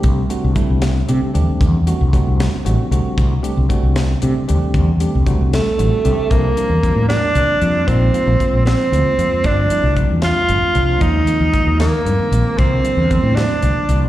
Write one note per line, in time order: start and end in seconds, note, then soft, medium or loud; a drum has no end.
0.00 0.20 G3 medium
0.00 0.20 A3 medium
0.00 0.20 C4 medium
0.00 0.20 D4 medium
0.00 0.20 G4 medium
0.00 kick medium
0.00 closed hi-hat medium
0.04 0.25 C2 loud
0.29 0.51 G3 medium
0.29 0.51 A3 medium
0.29 0.51 C4 medium
0.29 0.51 D4 medium
0.29 0.51 F#4 medium
0.29 closed hi-hat medium
0.44 0.54 C2 medium
0.55 0.98 G3 medium
0.55 0.98 A3 medium
0.55 0.98 C4 medium
0.55 0.98 D4 medium
0.55 0.98 E4 medium
0.55 kick medium
0.55 closed hi-hat medium
0.70 1.01 C2 medium
0.82 snare loud
0.82 closed hi-hat medium
1.08 1.19 C3 medium
1.08 1.29 G3 medium
1.08 1.29 A3 medium
1.08 1.30 C4 medium
1.08 1.30 D4 medium
1.08 1.30 G4 medium
1.08 closed hi-hat medium
1.22 muted fretless electric bass stroke soft
1.34 1.45 E2 medium
1.34 1.76 G3 medium
1.34 1.76 A3 medium
1.34 1.76 C4 medium
1.34 1.76 D4 medium
1.34 1.76 G4 medium
1.34 closed hi-hat medium
1.49 muted fretless electric bass stroke soft
1.61 1.92 E2 medium
1.61 kick medium
1.61 closed hi-hat medium
1.87 2.08 G3 medium
1.87 2.08 A3 medium
1.87 2.08 C4 medium
1.87 2.08 D4 medium
1.87 2.08 F#4 medium
1.87 closed hi-hat medium
2.01 2.21 C2 medium
2.13 2.55 G3 medium
2.13 2.55 A3 medium
2.13 2.55 C4 medium
2.13 2.55 D4 medium
2.13 2.55 F#4 medium
2.13 kick medium
2.13 closed hi-hat medium
2.27 2.47 C2 medium
2.40 snare loud
2.40 closed hi-hat medium
2.54 muted fretless electric bass stroke soft
2.65 2.76 A1 medium
2.65 2.86 G3 medium
2.65 2.86 A3 medium
2.65 2.86 C4 medium
2.65 2.86 D4 medium
2.65 2.86 F#4 medium
2.65 closed hi-hat medium
2.91 3.02 C2 medium
2.91 3.33 G3 medium
2.91 3.33 A3 medium
2.91 3.33 C4 medium
2.91 3.33 D4 medium
2.91 3.34 F#4 medium
2.91 closed hi-hat medium
3.05 muted fretless electric bass stroke soft
3.18 3.38 C2 medium
3.18 kick loud
3.18 closed hi-hat medium
3.43 3.64 G3 medium
3.43 3.64 A3 medium
3.43 3.64 C4 medium
3.43 3.64 D4 medium
3.43 3.64 G4 medium
3.43 closed hi-hat medium
3.57 3.67 C2 medium
3.69 4.11 G3 medium
3.69 4.11 A3 medium
3.69 4.11 C4 medium
3.69 4.12 D4 medium
3.69 4.12 F#4 medium
3.69 kick medium
3.69 closed hi-hat medium
3.83 4.14 C2 medium
3.96 snare medium
3.96 closed hi-hat medium
4.22 4.33 C3 medium
4.22 4.43 G3 medium
4.22 4.43 A3 medium
4.22 4.43 C4 medium
4.22 4.43 D4 medium
4.22 4.43 G4 medium
4.22 closed hi-hat medium
4.36 muted fretless electric bass stroke soft
4.48 4.59 E2 medium
4.48 4.90 G3 medium
4.48 4.90 A3 medium
4.48 4.90 C4 medium
4.48 4.90 D4 medium
4.48 4.90 G4 medium
4.48 closed hi-hat soft
4.62 muted fretless electric bass stroke soft
4.74 5.05 E2 medium
4.74 kick medium
4.74 closed hi-hat medium
5.00 5.21 G3 medium
5.00 5.21 A3 medium
5.00 5.21 C4 medium
5.00 5.21 D4 medium
5.00 5.22 G4 medium
5.00 closed hi-hat medium
5.15 5.35 C2 medium
5.26 5.68 G3 medium
5.26 5.69 A3 medium
5.26 5.68 C4 medium
5.26 5.69 D4 medium
5.26 5.69 F#4 medium
5.26 kick medium
5.26 closed hi-hat medium
5.41 5.61 C2 medium
5.53 6.32 A3 medium
5.53 snare loud
5.53 closed hi-hat medium
5.66 muted fretless electric bass stroke soft
5.78 5.90 A1 medium
5.78 6.00 G3 medium
5.78 5.99 A3 medium
5.78 5.99 C4 medium
5.78 5.99 D4 medium
5.78 6.00 F#4 medium
5.78 closed hi-hat medium
6.05 6.15 C2 medium
6.05 6.30 G3 medium
6.05 6.31 A3 medium
6.05 6.30 C4 medium
6.05 6.31 D4 medium
6.05 6.31 G4 medium
6.05 closed hi-hat medium
6.18 muted fretless electric bass stroke soft
6.30 6.52 C2 medium
6.30 6.52 F3 medium
6.30 6.52 G3 medium
6.30 7.08 A#3 medium
6.30 6.52 A#3 medium
6.30 6.52 C4 medium
6.30 6.52 D4 medium
6.30 kick medium
6.30 closed hi-hat medium
6.56 6.78 F3 medium
6.56 6.78 G3 medium
6.56 6.78 A#3 soft
6.56 6.78 C4 medium
6.56 6.78 D4 medium
6.56 closed hi-hat medium
6.70 6.90 E2 medium
6.83 7.25 F3 medium
6.83 7.25 G3 medium
6.83 7.25 A#3 medium
6.83 7.25 C4 soft
6.83 7.25 D4 medium
6.83 kick medium
6.83 closed hi-hat soft
6.96 7.17 A2 medium
7.09 7.89 D4 loud
7.09 snare medium
7.09 closed hi-hat medium
7.35 7.46 C2 medium
7.35 7.56 F3 medium
7.35 7.56 G3 soft
7.35 7.56 A#3 soft
7.35 7.56 C4 soft
7.35 7.57 D4 medium
7.35 closed hi-hat medium
7.61 7.82 F2 medium
7.61 7.86 F3 medium
7.61 7.88 G3 medium
7.61 7.87 A#3 medium
7.61 7.87 C4 soft
7.61 7.88 F4 medium
7.61 closed hi-hat soft
7.88 8.09 A#1 medium
7.88 8.09 F3 medium
7.88 8.09 G#3 medium
7.88 8.09 A#3 medium
7.88 8.65 C4 medium
7.88 8.09 C4 medium
7.88 8.09 D#4 medium
7.88 kick medium
7.88 closed hi-hat medium
8.14 8.35 F3 medium
8.14 8.35 G#3 soft
8.14 8.35 A#3 medium
8.14 8.35 C4 soft
8.14 8.35 F4 medium
8.14 closed hi-hat soft
8.27 8.38 A#1 medium
8.40 8.82 F3 medium
8.40 8.82 G#3 medium
8.40 8.82 A#3 medium
8.40 8.82 C4 medium
8.40 8.83 F4 medium
8.40 kick medium
8.40 closed hi-hat soft
8.53 8.74 A#1 medium
8.65 9.48 C4 medium
8.65 snare loud
8.65 closed hi-hat medium
8.92 9.03 D2 medium
8.92 9.13 F3 medium
8.92 9.13 G#3 medium
8.92 9.13 A#3 medium
8.92 9.13 C4 soft
8.92 9.13 F4 medium
8.92 closed hi-hat medium
9.05 muted fretless electric bass stroke soft
9.18 9.29 F2 medium
9.18 9.43 F3 medium
9.18 9.45 G#3 soft
9.18 9.45 A#3 medium
9.18 9.44 C4 medium
9.18 9.45 F4 medium
9.18 closed hi-hat soft
9.32 muted fretless electric bass stroke soft
9.44 9.65 G1 medium
9.44 9.65 F3 medium
9.44 9.66 G3 medium
9.44 9.65 A3 medium
9.44 9.66 C4 medium
9.44 9.66 D4 medium
9.44 9.97 D4 medium
9.44 kick medium
9.44 closed hi-hat medium
9.70 9.92 F3 medium
9.70 9.92 G3 medium
9.70 9.92 A3 medium
9.70 9.92 C4 soft
9.70 9.92 E4 medium
9.70 closed hi-hat medium
9.84 10.04 C2 medium
9.96 10.38 F3 medium
9.96 10.39 G3 medium
9.96 10.38 A3 medium
9.96 10.39 C4 medium
9.96 10.39 D4 medium
9.96 kick medium
9.96 closed hi-hat soft
10.10 10.31 E2 medium
10.22 11.03 F4 loud
10.22 snare medium
10.22 closed hi-hat medium
10.49 10.60 G1 medium
10.49 10.70 F3 medium
10.49 10.70 G3 medium
10.49 10.70 A3 soft
10.49 10.70 C4 medium
10.49 10.70 D4 medium
10.49 closed hi-hat medium
10.63 muted fretless electric bass stroke soft
10.74 10.96 C2 medium
10.74 10.99 F3 medium
10.74 11.01 G3 soft
10.74 11.01 A3 soft
10.74 11.01 C4 medium
10.74 11.01 D4 medium
10.74 closed hi-hat soft
11.00 11.22 D#2 medium
11.00 11.22 D#3 medium
11.00 11.22 F3 medium
11.00 11.22 G#3 medium
11.00 11.22 A#3 medium
11.00 11.22 C#4 medium
11.00 11.80 D#4 medium
11.00 kick medium
11.00 closed hi-hat medium
11.27 11.48 D#3 medium
11.27 11.48 F3 soft
11.27 11.49 G#3 soft
11.27 11.49 A#3 medium
11.27 11.49 C4 medium
11.27 closed hi-hat medium
11.41 11.51 D#2 medium
11.53 11.95 D#3 medium
11.53 11.95 F3 medium
11.53 11.95 G#3 medium
11.53 11.96 A#3 medium
11.53 11.96 D#4 medium
11.53 kick medium
11.53 closed hi-hat soft
11.67 11.87 D#2 medium
11.80 12.59 A#3 medium
11.80 snare medium
11.80 closed hi-hat medium
12.06 12.16 G2 medium
12.06 12.27 D#3 medium
12.06 12.27 F3 soft
12.06 12.27 G#3 soft
12.06 12.27 A#3 medium
12.06 12.27 C4 medium
12.06 closed hi-hat soft
12.19 muted fretless electric bass stroke soft
12.32 12.42 A#1 medium
12.32 12.58 D#3 medium
12.32 12.57 F3 soft
12.32 12.59 G#3 medium
12.32 12.58 A#3 soft
12.32 12.58 C4 medium
12.32 closed hi-hat medium
12.45 muted fretless electric bass stroke soft
12.58 12.79 C2 medium
12.58 12.79 D3 medium
12.58 12.79 F3 medium
12.58 12.79 G3 medium
12.58 12.80 A#3 medium
12.58 13.38 C4 medium
12.58 12.80 C4 medium
12.58 kick medium
12.58 closed hi-hat medium
12.84 13.05 D3 medium
12.84 13.05 F3 soft
12.84 13.05 G3 medium
12.84 13.05 A#3 medium
12.84 13.05 D4 medium
12.84 closed hi-hat medium
12.97 13.18 E2 medium
13.09 13.52 D3 medium
13.09 13.52 F3 soft
13.09 13.52 G3 medium
13.09 13.52 A#3 medium
13.09 13.52 C4 medium
13.09 kick medium
13.09 closed hi-hat soft
13.23 13.44 A2 medium
13.36 14.09 D4 medium
13.36 snare medium
13.36 closed hi-hat medium
13.62 13.73 C2 medium
13.62 13.84 D3 medium
13.62 13.84 F3 soft
13.62 13.84 G3 soft
13.62 13.84 A#3 medium
13.62 13.84 D4 medium
13.62 closed hi-hat soft
13.89 14.09 C2 medium
13.89 14.09 D3 medium
13.89 14.09 F3 medium
13.89 14.09 G3 medium
13.89 14.09 A#3 medium
13.89 14.09 D4 medium
13.89 closed hi-hat soft